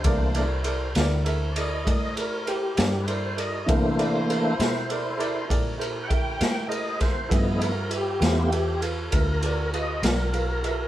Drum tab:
RD |xxxxxxxxxxxx|xxxxxxxxxxxx|xxxxxxxxxxxx|
SD |---o-----o--|---o-----o-o|---o-----o--|
BD |o-----o-----|o-----o-o--o|o-----o-----|